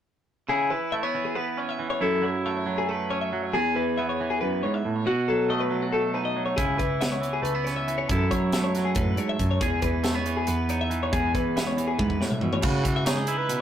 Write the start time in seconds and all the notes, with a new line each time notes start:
0.49 C#3 E4 G#4
0.70 E3 B4
0.92 A3 E5
1.03 B3 C#5
1.15 E3
1.25 G#4
1.35 B3 B4
1.57 C#4 C#5
1.69 E5
1.79 E3
1.90 C#5
2.01 F#2 E4 A4
2.22 F#3 C#5
2.45 A3 E5
2.57 C#5
2.66 F#3
2.78 G#4
2.89 A3 B4
3.10 C#4 C#5
3.21 E5
3.33 F#3
3.43 C#5
3.53 E2 G#4
3.76 E3 B4
3.98 B3 E5
4.09 C#5
4.21 E3
4.30 G#4
4.41 F#2 B4
4.63 G#2 C#5
4.74 E5
4.85 A2
4.96 C#5
5.06 B2 F#4
5.28 F#3 A4
5.49 A3 D#5
5.60 B4
5.70 F#3
5.82 F#4
5.93 A3 A4
6.14 D#4 B4
6.25 D#5
6.36 F#3
6.46 C#5
6.56 C#2 C#3 E4 G#4, kick, closed hi-hat
6.78 C#2 E3 B4, kick, closed hi-hat
7.01 B3 E5, snare, closed hi-hat
7.12 C#5
7.21 E3, closed hi-hat
7.33 G#4
7.42 C#2 A3 B4, closed hi-hat
7.55 B3
7.64 C#4 C#5, snare, closed hi-hat
7.76 E5
7.88 E3, closed hi-hat
7.98 C#5
8.08 F#2 E4 A4, kick, closed hi-hat
8.30 F#3 C#5, kick, closed hi-hat
8.52 A3 E5, snare, closed hi-hat
8.64 C#5
8.75 F#3, snare, closed hi-hat
8.85 G#4
8.95 F#2 A2 B4, kick, closed hi-hat
9.17 G#2 C#5, closed hi-hat
9.29 E5
9.39 F#2, kick, closed hi-hat
9.51 C#5
9.61 E2 G#4, kick, closed hi-hat
9.82 E2 E3 B4, kick, closed hi-hat
10.03 A3 E5, snare, closed hi-hat
10.14 B3 C#5
10.26 E3, closed hi-hat
10.37 G#4
10.47 E2 B3 B4, closed hi-hat
10.69 D#4 C#5, closed hi-hat
10.81 E5
10.90 E3, closed hi-hat
11.03 C#5
11.12 E2 G#4, kick, closed hi-hat
11.34 E3 B4, kick, closed hi-hat
11.56 B3 E5, snare, closed hi-hat
11.67 C#5
11.77 E3, closed hi-hat
11.87 G#4
11.99 E2 G#2 B4, kick, high tom
12.10 kick
12.21 A2 C#5, snare
12.31 E5, mid tom
12.41 B2 E3, floor tom
12.53 C#5, floor tom
12.62 C#3 F#4 B4, kick, crash
12.83 C#3 E3, kick, closed hi-hat
12.96 E5
13.06 D#4 G#4 C#5, snare, closed hi-hat
13.17 D#5
13.27 E4 B4, closed hi-hat
13.38 B4
13.49 B2, closed hi-hat